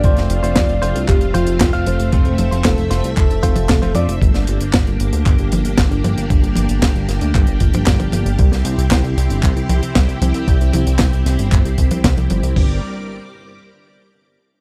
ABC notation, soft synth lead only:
X:1
M:4/4
L:1/8
Q:1/4=115
K:Gdor
V:1 name="Soft synth lead"
d4 G F2 c | c2 A2 A3 d | z8 | z8 |
z8 | z8 | z8 |]